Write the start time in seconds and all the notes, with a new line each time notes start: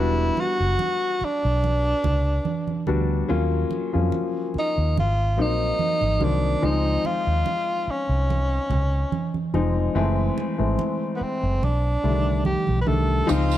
Already playing: E1 G3 B3 D4 E4 F#4
0.37 F#4, muted conga
0.60 F#1
0.79 high conga
1.21 D4, muted fingered electric bass stroke, muted conga
1.45 B1
1.64 muted conga
2.04 C#2, low conga
2.45 high conga
2.67 high conga
2.87 D2 G3 B3 D4 F#4, high conga
3.28 D#2 F#3 A#3 C#4 F4
3.71 muted conga
3.93 F2 F3 A#3 C#4 F4
3.99 F#3
4.12 high conga
4.54 muted fingered electric bass stroke, muted conga
4.59 D#4
4.78 D#2
4.97 G#1 F4, muted conga
5.37 A#1 F#3 A#3 C4 D#4
5.42 D#4
5.79 high conga
6.01 G#1, high conga
6.20 C2 D#3 F#3 A#3 C4, high conga
6.24 D4
6.62 C#2 F3 G#3 C4 D#4
7.05 F4, muted conga
7.27 D#2
7.46 high conga
7.88 C#4, muted fingered electric bass stroke
8.09 C2
8.30 muted conga
8.70 C#2, low conga
9.12 high conga
9.34 high conga
9.54 F1 F3 G#3 C4 D#4, high conga
9.95 F#1 E3 G#3 A3 C4
10.38 muted conga
10.58 G#1 E3 G#3 A3 C4
10.79 high conga
11.16 B3
11.21 C4, muted fingered electric bass stroke
11.43 F#1
11.62 B1 D4, muted conga
12.03 C2 D3 G3 A3 D4
12.10 D#3
12.45 G4, high conga
12.67 B1, high conga
12.81 B4
12.86 C2 D#3 G3 A3 D4 A4, high conga
13.26 F3 G#3 C4 D#4 F4 C5 F5, tambourine
13.30 C#2
13.52 tambourine